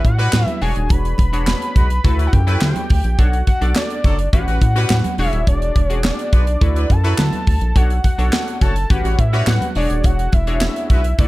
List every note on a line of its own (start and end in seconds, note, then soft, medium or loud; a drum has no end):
0.00 0.10 F#4 medium
0.00 0.10 G4 medium
0.00 0.10 B4 medium
0.05 0.28 A2 loud
0.05 0.46 F#5 loud
0.05 kick medium
0.05 closed hi-hat medium
0.18 0.37 G3 loud
0.18 0.53 C#4 medium
0.18 0.37 F#4 loud
0.18 0.53 F#4 medium
0.18 0.53 G4 medium
0.18 0.37 B4 loud
0.18 0.53 B4 medium
0.18 closed hi-hat medium
0.33 0.45 A2 medium
0.33 snare loud
0.33 clap loud
0.33 high conga medium
0.46 0.63 E5 loud
0.46 closed hi-hat medium
0.46 high conga medium
0.62 0.74 E1 loud
0.62 1.19 D4 medium
0.62 1.19 F#4 medium
0.62 1.19 G#4 medium
0.62 1.19 C#5 loud
0.62 0.92 G#5 loud
0.62 open hi-hat medium
0.76 0.88 D#1 medium
0.76 closed hi-hat medium
0.89 1.14 E1 loud
0.89 2.26 B5 loud
0.89 kick loud
0.89 closed hi-hat loud
0.89 muted conga soft
1.05 closed hi-hat medium
1.18 1.55 E1 loud
1.18 kick medium
1.18 closed hi-hat medium
1.18 muted conga medium
1.33 1.88 D4 medium
1.33 1.88 F#4 medium
1.33 1.88 G#4 medium
1.33 1.88 C#5 medium
1.33 closed hi-hat medium
1.47 snare loud
1.47 clap medium
1.47 high conga medium
1.62 closed hi-hat medium
1.76 2.00 B1 medium
1.76 1.88 G#3 medium
1.76 1.88 F#4 medium
1.76 1.88 B4 medium
1.76 kick loud
1.76 closed hi-hat medium
1.76 low conga medium
1.90 closed hi-hat medium
2.04 2.28 D2 loud
2.04 2.39 E4 medium
2.04 2.39 F#4 medium
2.04 2.39 A4 medium
2.04 2.39 B4 loud
2.04 kick loud
2.04 closed hi-hat medium
2.04 muted conga medium
2.04 low conga medium
2.19 2.31 F#3 medium
2.19 2.31 E4 medium
2.19 2.31 B4 medium
2.19 closed hi-hat medium
2.27 2.34 F#5 medium
2.33 2.57 F#2 loud
2.33 3.20 G5 loud
2.33 kick loud
2.33 closed hi-hat medium
2.33 low conga medium
2.47 2.82 F#3 medium
2.47 2.84 F#3 loud
2.47 2.81 E4 medium
2.47 2.84 E4 loud
2.47 2.82 A4 medium
2.47 2.84 B4 loud
2.47 2.82 B4 medium
2.47 closed hi-hat medium
2.61 2.73 D3 loud
2.61 snare loud
2.61 clap medium
2.61 high conga medium
2.76 closed hi-hat medium
2.76 high conga medium
2.90 3.02 D2 loud
2.90 kick loud
2.90 open hi-hat medium
3.04 3.16 A#1 loud
3.04 closed hi-hat medium
3.18 3.43 B1 loud
3.18 3.39 D4 medium
3.18 3.39 F#4 medium
3.18 3.39 A4 medium
3.18 3.40 C#5 medium
3.18 3.47 F#5 loud
3.18 kick loud
3.18 closed hi-hat medium
3.18 muted conga soft
3.33 closed hi-hat medium
3.47 3.74 F#5 loud
3.47 kick medium
3.47 closed hi-hat medium
3.47 muted conga medium
3.61 3.73 B1 loud
3.61 4.17 D4 medium
3.61 4.17 F#4 medium
3.61 4.17 A4 medium
3.61 4.17 D5 medium
3.61 closed hi-hat medium
3.76 4.29 D5 loud
3.76 snare loud
3.76 clap medium
3.76 high conga medium
3.90 closed hi-hat medium
4.04 4.28 F#1 loud
4.04 4.17 F#3 medium
4.04 4.17 D4 medium
4.04 4.17 A4 medium
4.04 kick loud
4.04 closed hi-hat medium
4.19 closed hi-hat medium
4.33 4.45 A1 loud
4.33 4.67 C#4 medium
4.33 4.67 F#4 medium
4.33 4.68 G4 medium
4.33 4.68 B4 medium
4.33 5.15 F#5 loud
4.33 kick loud
4.33 closed hi-hat medium
4.33 muted conga medium
4.47 4.59 A1 medium
4.47 4.60 G3 medium
4.47 4.60 F#4 medium
4.47 4.59 B4 medium
4.47 closed hi-hat medium
4.61 4.85 A2 loud
4.61 kick loud
4.61 closed hi-hat medium
4.76 4.94 G3 loud
4.76 5.10 C#4 medium
4.76 5.10 F#4 medium
4.76 4.94 F#4 loud
4.76 5.10 G4 medium
4.76 4.94 B4 loud
4.76 5.11 B4 medium
4.76 closed hi-hat medium
4.90 5.02 A2 medium
4.90 snare loud
4.90 clap loud
4.90 high conga medium
5.04 closed hi-hat medium
5.04 high conga medium
5.18 5.30 E1 loud
5.18 5.76 D4 medium
5.18 5.76 F#4 medium
5.18 5.76 G#4 medium
5.18 5.76 C#5 medium
5.18 5.45 E5 medium
5.18 open hi-hat medium
5.32 5.45 D#1 medium
5.32 closed hi-hat medium
5.47 5.71 E1 loud
5.47 5.86 D5 loud
5.47 kick loud
5.47 closed hi-hat medium
5.47 muted conga soft
5.62 closed hi-hat medium
5.76 6.12 E1 medium
5.76 kick medium
5.76 closed hi-hat medium
5.76 muted conga medium
5.86 6.45 D4 medium
5.86 6.45 F#4 medium
5.86 6.01 C#5 loud
5.90 6.45 G#4 medium
5.90 6.45 D5 medium
5.90 closed hi-hat medium
6.04 6.92 D5 loud
6.04 snare loud
6.04 clap medium
6.04 high conga medium
6.19 closed hi-hat medium
6.33 6.57 B1 medium
6.33 6.45 G#3 medium
6.33 6.45 F#4 medium
6.33 6.45 B4 medium
6.33 kick loud
6.33 closed hi-hat medium
6.47 closed hi-hat medium
6.61 6.85 D2 loud
6.61 6.96 E4 medium
6.61 6.96 F#4 medium
6.61 6.96 A4 medium
6.61 6.96 B4 medium
6.61 kick loud
6.61 closed hi-hat medium
6.61 muted conga medium
6.61 low conga medium
6.76 6.88 F#3 medium
6.76 6.88 E4 medium
6.76 6.88 B4 loud
6.76 closed hi-hat medium
6.90 7.14 F#2 loud
6.90 7.78 A5 loud
6.90 kick medium
6.90 closed hi-hat medium
7.04 7.22 F#3 loud
7.04 7.22 E4 loud
7.04 7.39 E4 medium
7.04 7.39 F#4 medium
7.04 7.39 A4 medium
7.04 7.22 B4 loud
7.04 7.39 B4 medium
7.04 closed hi-hat medium
7.18 7.30 D3 loud
7.18 snare loud
7.18 clap loud
7.18 high conga medium
7.33 closed hi-hat medium
7.33 high conga medium
7.47 7.59 D2 medium
7.47 kick loud
7.47 open hi-hat medium
7.61 7.73 A#1 loud
7.61 closed hi-hat medium
7.76 8.00 B1 loud
7.76 7.96 D4 medium
7.76 7.97 F#4 medium
7.76 7.97 A4 medium
7.76 7.97 C#5 medium
7.76 8.04 F#5 loud
7.76 kick loud
7.76 closed hi-hat medium
7.76 muted conga soft
7.90 closed hi-hat medium
8.04 8.58 F#5 loud
8.04 kick medium
8.04 closed hi-hat medium
8.04 muted conga medium
8.18 8.30 B1 loud
8.18 8.74 D4 medium
8.18 8.74 F#4 medium
8.18 8.74 A4 medium
8.18 8.74 C#5 medium
8.18 closed hi-hat medium
8.33 snare loud
8.33 clap loud
8.33 high conga medium
8.48 closed hi-hat medium
8.61 8.85 F#1 loud
8.61 8.74 A3 medium
8.61 8.74 F#4 medium
8.61 8.74 C#5 loud
8.61 8.92 A5 loud
8.61 kick loud
8.61 closed hi-hat medium
8.76 closed hi-hat medium
8.90 9.02 A1 loud
8.90 9.24 C#4 medium
8.90 9.24 F#4 medium
8.90 9.24 G4 medium
8.90 9.25 B4 medium
8.90 9.21 F#5 loud
8.90 kick loud
8.90 closed hi-hat medium
8.90 muted conga medium
9.04 9.16 A1 loud
9.04 9.16 G3 medium
9.04 9.16 F#4 medium
9.04 9.16 C#5 medium
9.04 closed hi-hat medium
9.19 9.43 A2 loud
9.19 9.47 E5 loud
9.19 kick loud
9.19 closed hi-hat medium
9.33 9.51 G3 loud
9.33 9.67 C#4 medium
9.33 9.67 F#4 medium
9.33 9.51 F#4 loud
9.33 9.68 G4 medium
9.33 9.68 B4 medium
9.33 9.51 C#5 loud
9.33 closed hi-hat medium
9.47 9.59 A2 medium
9.47 9.74 F#5 medium
9.47 snare loud
9.47 clap loud
9.47 high conga medium
9.61 closed hi-hat medium
9.61 high conga medium
9.75 9.88 E1 loud
9.75 10.33 D4 medium
9.75 10.33 F#4 medium
9.75 10.33 G#4 medium
9.75 10.33 C#5 medium
9.75 10.07 D5 medium
9.75 open hi-hat medium
9.90 10.02 D#1 loud
9.90 closed hi-hat medium
10.04 10.28 E1 loud
10.04 10.35 F#5 loud
10.04 kick loud
10.04 closed hi-hat medium
10.04 muted conga soft
10.19 closed hi-hat medium
10.33 10.69 E1 loud
10.33 10.90 E5 loud
10.33 kick medium
10.33 closed hi-hat medium
10.33 muted conga medium
10.47 11.02 D4 medium
10.47 11.02 F#4 medium
10.47 11.03 G#4 medium
10.47 11.03 C#5 medium
10.47 closed hi-hat medium
10.61 snare loud
10.61 clap medium
10.61 high conga medium
10.76 closed hi-hat medium
10.90 11.14 B1 medium
10.90 11.02 G#3 medium
10.90 11.02 F#4 medium
10.90 11.02 B4 medium
10.90 11.17 E5 medium
10.90 kick loud
10.90 closed hi-hat medium
11.04 closed hi-hat medium
11.18 11.28 D2 loud
11.18 11.28 E4 medium
11.18 11.28 F#4 medium
11.18 11.28 A4 medium
11.18 11.28 B4 medium
11.18 11.28 D5 medium
11.18 kick loud
11.18 closed hi-hat medium
11.18 muted conga medium
11.18 low conga medium